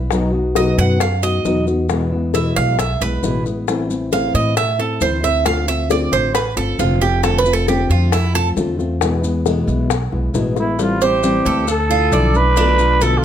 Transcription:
Already playing: upright bass B1, nylon-string guitar B3 E4
0.11 nylon-string guitar B2 F#3 B3 D#4 F#4, high bongo, maracas
0.33 nylon-string guitar B3 D#4 F#4
0.55 nylon-string guitar B2 F#3 B3 D#4 F#4, cuban tres D#5, high bongo, maracas
0.78 upright bass F#2, cuban tres F#5, high bongo, maracas
1.00 cuban tres F5, muted nylon-string guitar stroke, high bongo, maracas
1.23 nylon-string guitar B3 D#4 F#4, cuban tres D#5, high bongo, maracas
1.45 upright bass E2, nylon-string guitar B2 F#3 B3 D#4 F#4, high bongo, low bongo, maracas
1.67 nylon-string guitar B3 D#4 F#4, high bongo, maracas
1.89 nylon-string guitar B2 E3 G#3 B3 E4, high bongo, maracas
2.12 nylon-string guitar G#3 B3 E4
2.34 nylon-string guitar B2 E3 G#3 B3 E4, cuban tres E5, high bongo, maracas
2.56 upright bass B1, cuban tres F5, high bongo, maracas
2.79 cuban tres E5, muted nylon-string guitar stroke, high bongo, maracas
3.01 upright bass B1, nylon-string guitar G#3 B3 E4, cuban tres B4, high bongo, maracas
3.23 upright bass A1, nylon-string guitar B2 E3 G#3 B3 E4, high bongo, low bongo, maracas
3.46 nylon-string guitar G#3 B3 E4, high bongo, maracas
3.68 nylon-string guitar E3 A3 C4 E4, high bongo, maracas
3.89 nylon-string guitar A3 C4 E4, maracas
4.12 nylon-string guitar E3 A3 C4 E4, cuban tres F5, high bongo, maracas
4.34 upright bass A2, cuban tres D#5, high bongo, maracas
4.57 cuban tres E5, muted nylon-string guitar stroke, high bongo, maracas
4.78 nylon-string guitar A3 C4 E4, cuban tres A4, high bongo
5.01 upright bass D2, nylon-string guitar E3 A3 C4 E4, cuban tres C5, high bongo, low bongo, maracas
5.23 nylon-string guitar A3 C4 E4, cuban tres E5, high bongo, maracas
5.45 nylon-string guitar D3 A3 C4 F4, cuban tres F5, high bongo, maracas
5.68 nylon-string guitar A3 C4 F4, cuban tres E5, maracas
5.90 nylon-string guitar D3 A3 C4 F4, cuban tres D5, high bongo, maracas
6.12 upright bass A1, cuban tres C5, high bongo, maracas
6.34 cuban tres B4, muted nylon-string guitar stroke, high bongo, maracas
6.56 upright bass G1, nylon-string guitar A3 C4 F4, cuban tres A4, high bongo
6.79 upright bass F1, nylon-string guitar D3 A3 C4 F4, cuban tres F4, high bongo, low bongo, maracas
7.01 nylon-string guitar A3 C4 F4, cuban tres G4, high bongo, maracas
7.23 nylon-string guitar D3 A3 C4 F4, cuban tres A4, high bongo, maracas
7.39 cuban tres B4
7.46 nylon-string guitar A3 C4 F4, maracas
7.53 cuban tres A4
7.67 nylon-string guitar D3 A3 C4 F4, cuban tres G4, high bongo, maracas
7.89 upright bass F2, cuban tres F4, high bongo, maracas
8.12 cuban tres E4, muted nylon-string guitar stroke, high bongo, maracas
8.34 nylon-string guitar A3 C4 F4, cuban tres A4, high bongo, maracas
8.57 upright bass E2, nylon-string guitar D3 A3 C4 F4, high bongo, low bongo, maracas
8.79 nylon-string guitar A3 C4 F4, high bongo, maracas
9.01 nylon-string guitar B2 E3 G#3 B3 E4, high bongo, maracas
9.23 nylon-string guitar G#3 B3 E4, maracas
9.46 nylon-string guitar B2 E3 G#3 B3 E4, high bongo, maracas
9.68 upright bass B1, high bongo, maracas
9.90 muted nylon-string guitar stroke, high bongo, maracas
10.12 upright bass B1, nylon-string guitar G#3 B3 E4, high bongo
10.34 upright bass A1, nylon-string guitar B2 E3 G#3 B3 E4, high bongo, low bongo, maracas
10.56 nylon-string guitar G#3 B3 E4, trumpet E4, high bongo, maracas
10.79 nylon-string guitar E3 G3 C4 E4, trumpet F4, cowbell, maracas
11.01 nylon-string guitar G3 C4 E4, trumpet G4, cuban tres C5, maracas
11.23 nylon-string guitar E3 G3 C4 E4, cowbell, maracas
11.46 upright bass D2, cuban tres A4, cowbell, maracas
11.67 trumpet A4, muted nylon-string guitar stroke, cowbell, maracas
11.90 nylon-string guitar A3 D4 E4, cuban tres F4
12.12 upright bass B1, nylon-string guitar D3 F3 A3 D4 E4, cuban tres D5, cowbell, maracas
12.34 nylon-string guitar A3 D4 E4, trumpet B4, maracas
12.56 nylon-string guitar B2 D3 A3 B3 F4, cuban tres D4, cowbell, maracas
12.79 nylon-string guitar A3 B3 F4, maracas
13.01 nylon-string guitar B2 D3 A3 B3 F4, cuban tres A4, trumpet A4, cowbell, maracas
13.18 trumpet F4

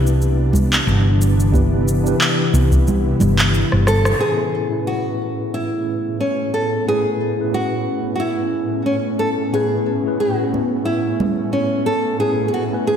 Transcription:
Already playing: fretless electric bass C2, ambient pad C3 E3 B3 D4, tine electric piano D4 E4 G4 B4
0.07 shaker
0.22 shaker
0.53 kick, high conga, low conga, shaker
0.73 clap, shaker
0.87 fretless electric bass G1, shaker
1.22 shaker
1.40 shaker
1.52 tine electric piano D4 E4 G4 B4, ambient pad E4, kick, high conga, shaker
1.88 shaker
2.03 tine electric piano D4 E4 G4, shaker
2.08 tine electric piano B4
2.21 clap, shaker
2.54 fretless electric bass C2, kick, high conga, shaker
2.72 kick, shaker
2.87 low conga, shaker
3.20 fretless electric bass G1, high conga, low conga, shaker
3.39 clap, shaker
3.54 shaker
3.72 fretless electric bass G1, cross-stick
3.87 nylon-string guitar A4, cross-stick, shaker
4.05 cross-stick, shaker
4.18 tine electric piano A2 C#4 E4 B4, ambient pad A2 A3 B3 C#4, nylon-string guitar G#4
4.69 tine electric piano A2 C#4 E4 G#4
4.73 tine electric piano B4
4.87 nylon-string guitar F#4
5.54 nylon-string guitar E4
6.20 nylon-string guitar C#4
6.54 nylon-string guitar A4
6.86 tine electric piano A2 C#4 E4 G#4 B4, nylon-string guitar G#4
7.36 tine electric piano A2 C#4 E4 G#4
7.41 tine electric piano B4
7.54 nylon-string guitar F#4
8.15 nylon-string guitar F#4
8.20 nylon-string guitar E4
8.86 nylon-string guitar C#4
9.19 nylon-string guitar A4
9.53 tine electric piano A2 C#4 E4 G#4 B4, nylon-string guitar G#4
10.03 tine electric piano A2 C#4 E4 G#4
10.08 tine electric piano B4
10.20 nylon-string guitar F#4
10.54 high conga
10.85 nylon-string guitar E4
11.20 high conga, low conga
11.53 nylon-string guitar C#4
11.86 nylon-string guitar A4
12.19 tine electric piano A2 C#4 E4 G#4 B4, nylon-string guitar G#4
12.48 nylon-string guitar G#4
12.54 nylon-string guitar F#4
12.69 tine electric piano A2 C#4 E4 G#5
12.74 tine electric piano B4
12.87 nylon-string guitar G#4

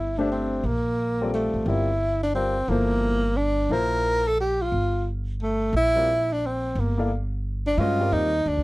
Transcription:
Already playing: upright bass G1, tenor saxophone E4
0.18 grand piano A3 D4 G4 C5 E5, tenor saxophone D4
0.31 tenor saxophone C4
0.64 upright bass A#1, tenor saxophone A#3
1.21 grand piano G3 C4 F4 A4 D5
1.34 tenor saxophone A3
1.54 upright bass A1
1.66 upright bass G1, grand piano G3 C4 F4 A#4 D5, tenor saxophone E4
2.23 tenor saxophone D4
2.34 grand piano G3 C4 F4 A#4 D5, tenor saxophone C4
2.68 upright bass G1, grand piano F3 A#3 E4 A4 C5, tenor saxophone A#3
3.37 tenor saxophone D4
3.69 upright bass A#1, grand piano F3 A#3 E4 A#4 C5, tenor saxophone A#4
4.27 tenor saxophone A4
4.40 tenor saxophone G4
4.61 tenor saxophone F4
4.72 upright bass G1
5.42 tenor saxophone A3
5.73 upright bass A#1, tenor saxophone E4
5.95 grand piano G3 C4 F4 A#4 D5
6.32 tenor saxophone D4
6.46 tenor saxophone C4
6.75 upright bass G1
6.80 tenor saxophone A#3
6.98 grand piano A#3 E4 A4 D5 F5
7.67 tenor saxophone D4
7.78 upright bass G2, grand piano G#3 C#4 F#4 B4 D#5, tenor saxophone F4
7.99 grand piano G3 C4 F4 A#4 D5
8.12 upright bass D#2, tenor saxophone D#4
8.46 upright bass D2, tenor saxophone D4
8.57 upright bass C2

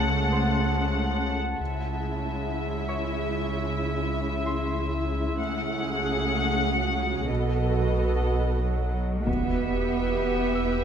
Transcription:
Already playing: double bass section C#2, sub bass C#2, cello section C#3, viola section G#3 A3, grand piano C#5 C#6, violin section F#5, ambient pad F#5 A5
0.00 grand piano A5
0.32 grand piano C5 C6
1.59 double bass section C#2, sub bass C#2, cello section C#3, viola section G#3 E4, ambient pad E4 E5, violin section E5
2.89 grand piano C#5 C#6
4.46 grand piano C6
5.38 double bass section C#2, cello section C#3, viola section A3 G#4, ambient pad F#4 F#5, violin section F#5
7.28 sub bass B1, double bass section B1, cello section B2, viola section B3 A4, ambient pad D#5 F#5, violin section D#5
8.60 cello section F#3
9.26 sub bass E1, double bass section E2, cello section B3, viola section G4 B4, ambient pad G4 B4 E5, violin section E5, taiko, impact
10.55 grand piano E5 E6

